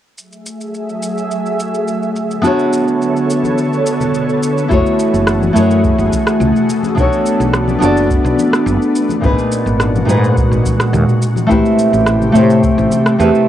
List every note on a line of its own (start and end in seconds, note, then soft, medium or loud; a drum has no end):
0.17 2.13 F#3 medium
0.17 2.13 A3 medium
0.17 2.14 G#4 medium
0.17 2.13 E5 medium
0.17 shaker soft
0.33 shaker soft
0.46 shaker medium
0.61 shaker soft
0.74 shaker soft
0.89 shaker soft
1.03 shaker medium
1.18 shaker soft
1.31 shaker soft
1.46 shaker soft
1.60 shaker medium
1.74 shaker soft
1.88 shaker soft
2.03 shaker soft
2.15 4.67 D3 medium
2.15 4.68 B3 medium
2.15 4.68 A4 medium
2.15 4.68 C#5 medium
2.15 shaker medium
2.31 shaker soft
2.42 4.64 B3 medium
2.42 4.64 D4 medium
2.42 4.65 F#4 medium
2.42 4.66 A4 medium
2.42 shaker soft
2.47 4.66 C#5 loud
2.60 shaker soft
2.73 shaker medium
2.88 shaker soft
3.02 shaker soft
3.17 shaker soft
3.30 shaker medium
3.43 high conga medium
3.43 shaker soft
3.58 shaker soft
3.73 shaker soft
3.86 shaker medium
4.00 low conga medium
4.00 shaker soft
4.14 shaker soft
4.29 shaker soft
4.43 shaker medium
4.58 shaker soft
4.68 4.81 F#1 medium
4.68 6.67 E3 medium
4.68 5.51 A3 medium
4.68 9.19 A3 medium
4.68 5.51 E4 medium
4.68 5.52 F#4 medium
4.68 6.67 F#4 medium
4.68 6.67 G#4 medium
4.68 5.53 G#4 medium
4.68 kick loud
4.68 shaker soft
4.73 5.53 C#5 medium
4.86 shaker soft
4.99 shaker medium
5.14 5.49 F#1 medium
5.14 shaker soft
5.27 cross-stick medium
5.27 shaker soft
5.41 high conga medium
5.41 shaker soft
5.53 5.91 F#2 medium
5.53 6.66 A3 medium
5.53 6.66 E4 medium
5.53 6.67 F#4 medium
5.53 6.68 G#4 medium
5.53 shaker medium
5.58 6.68 C#5 medium
5.71 shaker soft
5.84 kick loud
5.84 shaker soft
5.98 6.08 F#1 medium
5.98 shaker soft
6.12 kick medium
6.12 high conga medium
6.12 shaker medium
6.27 cross-stick medium
6.27 shaker soft
6.40 6.50 C#2 medium
6.40 low conga medium
6.40 shaker soft
6.56 shaker soft
6.69 9.21 B3 medium
6.69 9.21 D4 medium
6.69 shaker medium
6.83 high conga medium
6.83 shaker soft
6.95 7.07 B1 medium
6.95 7.77 B3 medium
6.95 7.78 D4 medium
6.95 7.78 F#4 medium
6.95 7.79 A4 medium
6.95 kick loud
6.95 shaker soft
6.99 7.80 C#5 medium
7.12 shaker soft
7.26 shaker medium
7.40 7.75 B1 medium
7.40 shaker soft
7.53 cross-stick medium
7.53 shaker soft
7.68 high conga loud
7.68 shaker soft
7.79 8.18 F#1 medium
7.79 9.18 B3 medium
7.79 9.19 D4 medium
7.79 9.20 F#4 medium
7.79 9.20 A4 medium
7.79 shaker medium
7.84 9.21 D5 medium
7.97 shaker soft
8.10 kick loud
8.10 shaker soft
8.25 8.34 B1 medium
8.25 shaker soft
8.38 high conga medium
8.38 shaker medium
8.53 cross-stick medium
8.53 shaker soft
8.66 8.77 F#1 medium
8.66 shaker soft
8.82 shaker soft
8.96 shaker medium
9.09 high conga medium
9.09 shaker soft
9.21 9.34 G#1 medium
9.21 10.04 A#2 medium
9.21 11.20 A#2 medium
9.21 11.20 G#3 medium
9.21 10.04 D#4 medium
9.21 11.20 F#4 medium
9.21 10.05 G#4 medium
9.21 kick loud
9.21 shaker soft
9.25 10.06 B4 medium
9.39 shaker soft
9.52 shaker medium
9.66 10.02 G#1 medium
9.66 shaker soft
9.80 cross-stick medium
9.80 shaker soft
9.96 high conga medium
9.96 shaker soft
10.05 10.45 G#2 medium
10.05 11.18 A#2 medium
10.05 11.19 D#4 medium
10.05 shaker medium
10.10 11.21 G#4 medium
10.10 11.21 B4 medium
10.24 shaker soft
10.37 kick loud
10.37 shaker soft
10.52 10.61 G#1 medium
10.52 shaker soft
10.65 kick medium
10.65 high conga medium
10.65 shaker medium
10.80 cross-stick medium
10.80 shaker soft
10.93 11.04 D#2 medium
10.93 low conga medium
10.93 shaker soft
11.09 shaker soft
11.21 13.48 C3 medium
11.21 13.48 A3 medium
11.21 13.48 G4 medium
11.21 shaker medium
11.36 high conga medium
11.36 shaker soft
11.47 11.60 A1 medium
11.47 12.30 A3 medium
11.47 12.31 C4 medium
11.47 12.31 E4 medium
11.47 12.32 G4 medium
11.47 kick loud
11.51 12.32 B4 medium
11.51 shaker soft
11.66 shaker soft
11.79 shaker medium
11.93 12.28 A1 medium
11.93 shaker soft
12.06 cross-stick medium
12.06 shaker soft
12.22 high conga medium
12.22 shaker soft
12.32 12.71 A2 medium
12.32 13.16 A3 medium
12.32 13.16 C4 medium
12.32 13.17 E4 medium
12.32 13.17 G4 medium
12.32 shaker medium
12.37 13.18 C5 medium
12.50 shaker soft
12.63 kick loud
12.63 shaker soft
12.78 12.87 A1 medium
12.78 shaker soft
12.90 high conga medium
12.90 shaker medium
13.06 cross-stick medium
13.06 shaker soft
13.19 13.30 E2 medium
13.19 13.48 A3 medium
13.19 13.48 C4 medium
13.19 13.48 E4 medium
13.19 13.48 G4 medium
13.19 13.48 B4 medium
13.19 shaker soft
13.35 shaker soft